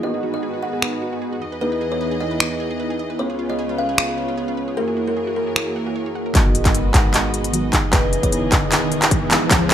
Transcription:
0.03 G#2 D#3 B3 D#4 F#4 G#4 B4 D#5
0.14 G#4
0.23 F#4
0.34 F#4 D#5
0.43 G#4
0.53 F#4
0.63 B3 D#4 F#4 G#4 B4 D#5 F#5
0.73 G#4
0.82 B4, finger snap
0.93 G#4
1.02 F#4
1.13 F#4
1.22 G#4
1.33 F#4
1.42 E2 E3 G#4 D#5
1.52 B4
1.61 B3 D#4 E4 G#4 B4 D#5
1.72 B4
1.81 G#4
1.92 G#4 C#5
2.01 B4
2.11 G#4
2.20 B3 D#4 E4 G#4 D#5
2.31 B4
2.40 D#5, finger snap
2.51 B4
2.60 G#4
2.71 G#4
2.80 B4
2.90 G#4
2.99 D#5
3.10 B4
3.19 C#2 C#3 B3 C#4 F4 G#4 B4 C#5
3.30 G#4
3.39 F4
3.49 F4 D#5
3.59 G#4
3.69 F4
3.78 B3 C#4 F4 G#4 B4 C#5 F5
3.89 G#4
3.98 B4, finger snap
4.09 G#4
4.18 F4
4.28 F4
4.37 G#4
4.48 F4
4.57 B4
4.68 G#4
4.77 F#2 E3 A#3 E4 F#4 G#4 A#4 C#5
4.88 G#4
4.97 F#4
5.07 F#4 A#4
5.17 G#4
5.27 F#4
5.36 A#3 E4 F#4 G#4 A#4 C#5
5.47 G#4
5.56 A#4, finger snap
5.67 G#4
5.76 F#5
5.86 F#4
5.96 C#5
6.06 C#5
6.15 F#5
6.26 A#4
6.33 G#1 D#3 F#3 G#3 B3 D#4 F#4 B4 D#5, kick, clap, closed hi-hat, riser
6.37 F#4
6.55 closed hi-hat
6.65 D#5, kick, clap, closed hi-hat
6.75 closed hi-hat
6.94 G#1 B3 D#4 F#4 G#4 D#5 F#5, kick, clap, closed hi-hat
7.14 clap, closed hi-hat
7.34 closed hi-hat
7.44 closed hi-hat
7.52 D#3 F#3 G#3 B3 F#4, closed hi-hat
7.72 E3 G#3 B3 D#4 G#4, kick, clap, closed hi-hat
7.91 E1 E3 G#3 B3 D#4 E4 G#4 B4 D#5, kick, clap, closed hi-hat
7.95 G#4
8.13 closed hi-hat
8.23 C#5, kick, closed hi-hat
8.32 closed hi-hat
8.52 E1 B3 D#4 E4 G#4 D#5, kick, clap, closed hi-hat
8.72 clap, closed hi-hat
8.92 closed hi-hat
9.02 clap, closed hi-hat
9.10 E3 G#3 B3 D#4 G#4, kick, closed hi-hat
9.30 E3 G#3 B3 D#4 G#4, clap, closed hi-hat
9.49 C#2 C#3 F3 G#3 B3 C#4 F4 C#5, kick, clap, closed hi-hat
9.53 G#4
9.71 clap, closed hi-hat

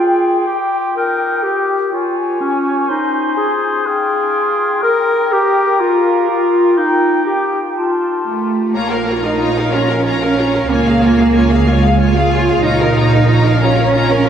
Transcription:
Already playing: F4 G#4 G5
0.47 G4
0.96 D#4 A#4
1.43 G4
1.92 F4 C#5 G#5
2.41 C#4
2.89 D#4 C5
3.37 G#4
3.87 F4 G#4 G5
4.83 A#4
5.32 G4
5.80 F4 F5
6.29 F4
6.77 D#4 G5
7.26 G4
7.76 F4 A5
8.25 A3
8.75 A#1 A#3 F4 C#5 A#5
8.91 A#4 F5
9.07 F4 C#5 A#5
9.24 D#4 A#4 F5
9.39 F4 C#5 A#5
9.56 A#4 F5
9.71 C#4 F4 C#5 A#5
9.88 A#4 F5
10.04 F4 C#5 A#5
10.21 C#4 A#4 F5
10.37 F4 C#5 A#5
10.53 A#4 F5
10.70 C#2 A#3 F4 C#5 G#5
10.85 G#4 F5
11.01 F4 C#5 G#5
11.18 G#4 F5
11.34 F4 C#5 G#5
11.51 G#4 F5
11.66 G#3 F4 C#5 G#5
11.83 G#4 F5
11.99 F4 C#5 G#5
12.15 F4 G#4 F5
12.31 F4 C#5 G#5
12.48 G#4 F5
12.64 A#1 D#4 F4 C#5 A#5
12.80 A#4 F5
12.96 F4 C#5 A#5
13.12 A#4 F5
13.28 F4 C#5 A#5
13.45 A#4 F5
13.61 C#4 F4 C#5 A#5
13.77 A#4 F5
13.93 F4 C#5 A#5
14.09 A#4 F5
14.25 F4 C#5 A#5

